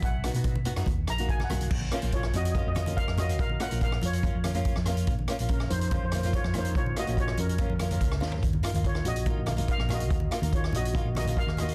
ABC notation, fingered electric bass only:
X:1
M:4/4
L:1/16
Q:1/4=143
K:D#phr
V:1 name="Fingered electric bass" clef=bass
B,,,3 B,,4 F,, D,,2 A,,,4 B,,,2 | [K:Bbm] B,,,2 z B,,,3 F,,3 F,,4 F,,3 | B,,,2 z B,,,3 F,,3 F,,4 F,,3 | B,,,2 z B,,,3 F,,3 F,,4 F,,3 |
B,,,2 z B,,,3 F,,3 F,,3 D,,2 E,,2 | E,,2 z E,,3 B,,,3 B,,,4 B,,,3 | E,,2 z E,,3 B,,,3 B,,,4 E,,3 |]